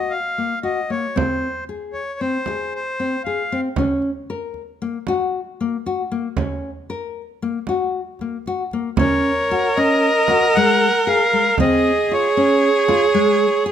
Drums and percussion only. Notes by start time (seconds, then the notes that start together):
0.65 frame drum
1.17 frame drum
1.42 frame drum
1.93 frame drum
2.46 frame drum
3.24 frame drum
3.76 frame drum
4.02 frame drum
4.54 frame drum
5.07 frame drum
5.86 frame drum
6.37 frame drum
6.89 frame drum
7.67 frame drum
8.19 frame drum
8.46 frame drum
8.71 frame drum
8.97 frame drum
9.50 frame drum
10.28 frame drum
10.55 frame drum
11.58 frame drum
12.09 frame drum
12.88 frame drum
13.15 frame drum